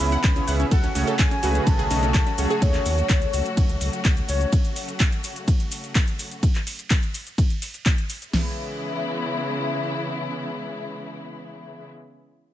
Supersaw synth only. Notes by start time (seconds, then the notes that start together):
0.00 C#3 B3 C#4 E4 G#4 E5
0.36 C#3 B3 C#4 E4 G#4 C#5
0.48 B3 C#4 E4 G#4 E5
0.95 C#3 A3 C#4 F#4 G#4 C#5
1.43 C#3 A3 C#4 F#4 G#4 B4
1.91 C#3 A3 C#4 F#4 G#4 D#5
2.03 C#3 A3 C#4 F#4 G#4 C#5
2.38 C#3 A3 C#4 F#4 G#4 C#5